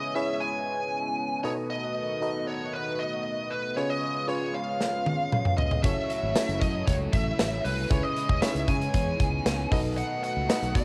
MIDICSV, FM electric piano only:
0, 0, Header, 1, 2, 480
1, 0, Start_track
1, 0, Key_signature, 4, "minor"
1, 0, Tempo, 517241
1, 1579, Time_signature, 4, 2, 24, 8
1, 10064, End_track
2, 0, Start_track
2, 0, Title_t, "FM electric piano"
2, 0, Program_c, 0, 5
2, 0, Control_c, 0, 64, 127
2, 0, Note_on_c, 0, 49, 67
2, 0, Note_on_c, 0, 61, 79
2, 0, Note_on_c, 0, 64, 67
2, 0, Note_on_c, 0, 68, 71
2, 0, Note_on_c, 0, 71, 73
2, 0, Note_on_c, 0, 73, 84
2, 138, Note_off_c, 0, 61, 0
2, 138, Note_on_c, 0, 61, 81
2, 140, Note_off_c, 0, 64, 0
2, 140, Note_on_c, 0, 64, 72
2, 142, Note_off_c, 0, 68, 0
2, 142, Note_on_c, 0, 68, 73
2, 146, Note_off_c, 0, 71, 0
2, 146, Note_on_c, 0, 71, 75
2, 150, Note_off_c, 0, 73, 0
2, 150, Note_on_c, 0, 73, 85
2, 344, Note_off_c, 0, 49, 0
2, 829, Note_off_c, 0, 61, 0
2, 830, Note_off_c, 0, 64, 0
2, 831, Note_off_c, 0, 68, 0
2, 833, Note_off_c, 0, 71, 0
2, 835, Note_off_c, 0, 73, 0
2, 1333, Note_on_c, 0, 63, 86
2, 1337, Note_on_c, 0, 66, 79
2, 1339, Note_on_c, 0, 47, 72
2, 1340, Note_on_c, 0, 69, 74
2, 1341, Note_on_c, 0, 71, 75
2, 1345, Note_on_c, 0, 75, 91
2, 1353, Control_c, 0, 64, 0
2, 1488, Control_c, 0, 64, 127
2, 1912, Note_off_c, 0, 63, 0
2, 1914, Note_off_c, 0, 66, 0
2, 1916, Note_off_c, 0, 69, 0
2, 1917, Note_off_c, 0, 71, 0
2, 1918, Note_off_c, 0, 75, 0
2, 2022, Note_off_c, 0, 47, 0
2, 2056, Note_on_c, 0, 63, 77
2, 2059, Note_on_c, 0, 66, 71
2, 2061, Note_on_c, 0, 69, 69
2, 2065, Note_on_c, 0, 71, 72
2, 2068, Note_on_c, 0, 75, 84
2, 2748, Note_off_c, 0, 63, 0
2, 2750, Note_off_c, 0, 66, 0
2, 2751, Note_off_c, 0, 69, 0
2, 2753, Note_off_c, 0, 71, 0
2, 2754, Note_off_c, 0, 75, 0
2, 3494, Note_on_c, 0, 61, 79
2, 3496, Note_on_c, 0, 65, 72
2, 3498, Note_on_c, 0, 68, 74
2, 3500, Note_on_c, 0, 49, 66
2, 3503, Note_on_c, 0, 71, 71
2, 3504, Note_on_c, 0, 73, 83
2, 3512, Control_c, 0, 64, 0
2, 3667, Control_c, 0, 64, 127
2, 3842, Note_off_c, 0, 61, 0
2, 3843, Note_off_c, 0, 65, 0
2, 3844, Note_off_c, 0, 68, 0
2, 3846, Note_off_c, 0, 71, 0
2, 3847, Note_off_c, 0, 73, 0
2, 3969, Note_on_c, 0, 61, 79
2, 3970, Note_on_c, 0, 65, 71
2, 3975, Note_on_c, 0, 68, 69
2, 3978, Note_on_c, 0, 71, 71
2, 3980, Note_on_c, 0, 73, 90
2, 4183, Note_off_c, 0, 49, 0
2, 4665, Note_off_c, 0, 61, 0
2, 4665, Note_off_c, 0, 65, 0
2, 4668, Note_off_c, 0, 68, 0
2, 4669, Note_off_c, 0, 71, 0
2, 4670, Note_off_c, 0, 73, 0
2, 5419, Note_on_c, 0, 61, 79
2, 5420, Note_on_c, 0, 64, 68
2, 5425, Note_on_c, 0, 66, 74
2, 5429, Note_on_c, 0, 69, 70
2, 5429, Note_on_c, 0, 73, 85
2, 5431, Control_c, 0, 64, 0
2, 5604, Control_c, 0, 64, 127
2, 5765, Note_off_c, 0, 61, 0
2, 5765, Note_off_c, 0, 64, 0
2, 5767, Note_off_c, 0, 66, 0
2, 5769, Note_off_c, 0, 69, 0
2, 5769, Note_off_c, 0, 73, 0
2, 5897, Note_on_c, 0, 61, 76
2, 5898, Note_on_c, 0, 64, 75
2, 5903, Note_on_c, 0, 66, 71
2, 5904, Note_on_c, 0, 69, 72
2, 5908, Note_on_c, 0, 73, 85
2, 6589, Note_off_c, 0, 61, 0
2, 6589, Note_off_c, 0, 64, 0
2, 6592, Note_off_c, 0, 66, 0
2, 6592, Note_off_c, 0, 69, 0
2, 6594, Note_off_c, 0, 73, 0
2, 7331, Note_on_c, 0, 61, 78
2, 7333, Note_on_c, 0, 64, 69
2, 7337, Note_on_c, 0, 49, 68
2, 7338, Note_on_c, 0, 68, 71
2, 7341, Note_on_c, 0, 71, 71
2, 7342, Note_on_c, 0, 73, 86
2, 7352, Control_c, 0, 64, 0
2, 7491, Control_c, 0, 64, 127
2, 7681, Note_off_c, 0, 61, 0
2, 7682, Note_off_c, 0, 64, 0
2, 7684, Note_off_c, 0, 68, 0
2, 7686, Note_off_c, 0, 71, 0
2, 7686, Note_off_c, 0, 73, 0
2, 7810, Note_on_c, 0, 61, 78
2, 7815, Note_on_c, 0, 63, 59
2, 7817, Note_on_c, 0, 68, 70
2, 7818, Note_on_c, 0, 71, 72
2, 7822, Note_on_c, 0, 73, 90
2, 7872, Note_on_c, 0, 64, 75
2, 7875, Note_off_c, 0, 63, 0
2, 8021, Note_off_c, 0, 49, 0
2, 8505, Note_off_c, 0, 61, 0
2, 8509, Note_off_c, 0, 68, 0
2, 8509, Note_off_c, 0, 71, 0
2, 8511, Note_off_c, 0, 73, 0
2, 8536, Note_off_c, 0, 64, 0
2, 9012, Note_on_c, 0, 63, 83
2, 9017, Note_on_c, 0, 66, 79
2, 9018, Note_on_c, 0, 69, 76
2, 9019, Note_on_c, 0, 47, 68
2, 9021, Note_on_c, 0, 71, 77
2, 9024, Note_on_c, 0, 75, 91
2, 9030, Control_c, 0, 64, 0
2, 9178, Control_c, 0, 64, 127
2, 9592, Note_off_c, 0, 63, 0
2, 9595, Note_off_c, 0, 66, 0
2, 9595, Note_off_c, 0, 69, 0
2, 9597, Note_off_c, 0, 71, 0
2, 9598, Note_off_c, 0, 75, 0
2, 9702, Note_off_c, 0, 47, 0
2, 9732, Note_on_c, 0, 63, 76
2, 9734, Note_on_c, 0, 66, 74
2, 9736, Note_on_c, 0, 69, 72
2, 9739, Note_on_c, 0, 71, 72
2, 9740, Note_on_c, 0, 75, 91
2, 10064, Note_off_c, 0, 63, 0
2, 10064, Note_off_c, 0, 66, 0
2, 10064, Note_off_c, 0, 69, 0
2, 10064, Note_off_c, 0, 71, 0
2, 10064, Note_off_c, 0, 75, 0
2, 10064, End_track
0, 0, End_of_file